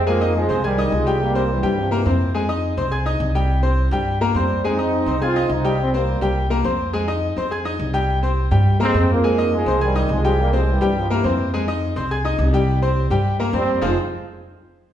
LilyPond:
<<
  \new Staff \with { instrumentName = "Grand piano" } { \time 4/4 \key f \minor \tempo 4 = 209 <aes aes' aes''>8 <ees' ees'' ees'''>4 <c' c'' c'''>8 <aes' aes'' aes'''>8 <ees' ees'' ees'''>4 <g g' g''>8~ | <g g' g''>8 <c' c'' c'''>4 <g g' g''>4 <bes bes' bes''>8 <c' c'' c'''>4 | <aes aes' aes''>8 <ees' ees'' ees'''>4 <c' c'' c'''>8 <aes' aes'' aes'''>8 <ees' ees'' ees'''>4 <g g' g''>8~ | <g g' g''>8 <c' c'' c'''>4 <g g' g''>4 <bes bes' bes''>8 <c' c'' c'''>4 |
<aes aes' aes''>8 <ees' ees'' ees'''>4 <c' c'' c'''>8 <aes' aes'' aes'''>8 <ees' ees'' ees'''>4 <g g' g''>8~ | <g g' g''>8 <c' c'' c'''>4 <g g' g''>4 <bes bes' bes''>8 <c' c'' c'''>4 | <aes aes' aes''>8 <ees' ees'' ees'''>4 <c' c'' c'''>8 <aes' aes'' aes'''>8 <ees' ees'' ees'''>4 <g g' g''>8~ | <g g' g''>8 <c' c'' c'''>4 <g g' g''>4 <bes bes' bes''>8 <c' c'' c'''>4 |
<aes aes' aes''>8 <ees' ees'' ees'''>4 <c' c'' c'''>8 <aes' aes'' aes'''>8 <ees' ees'' ees'''>4 <g g' g''>8~ | <g g' g''>8 <c' c'' c'''>4 <g g' g''>4 <bes bes' bes''>8 <c' c'' c'''>4 | <aes aes' aes''>8 <ees' ees'' ees'''>4 <c' c'' c'''>8 <aes' aes'' aes'''>8 <ees' ees'' ees'''>4 <g g' g''>8~ | <g g' g''>8 <c' c'' c'''>4 <g g' g''>4 <bes bes' bes''>8 <c' c'' c'''>4 |
<f c' ees' f' aes' c''>8 r2. r8 | }
  \new Staff \with { instrumentName = "Trombone section" } { \clef bass \time 4/4 \key f \minor <f bes>4 <f aes>4 <ees g>4 <f aes>4 | <g bes>4 <e g>4 <c f>8 <c e>4 r8 | r1 | r2. <g c'>4 |
<c' ees'>2 <c' f'>4 <c' ees'>4 | <g c'>8 <g bes>4. r2 | r1 | r2 r8 <aes c'>4 <f bes>8~ |
<f bes>4 <f aes>4 <ees g>4 <f aes>4 | <g bes>8 <f aes>8 <e g>4 <c f>8 <c e>4 r8 | r1 | r2. <g c'>4 |
f'8 r2. r8 | }
  \new Staff \with { instrumentName = "Upright bass" } { \clef bass \time 4/4 \key f \minor f,4. c,4. c,4~ | c,4. g,4. f,4~ | f,4. c,4. c,4~ | c,4. g,4. f,4~ |
f,4. c,4. c,4~ | c,4. c,4. f,4~ | f,4. f,4. c,4~ | c,4. g,4. f,4~ |
f,4. c,4. c,4~ | c,4. g,4. f,4~ | f,4. c,4. c,4~ | c,4. g,4. f,4 |
f,,8 r2. r8 | }
>>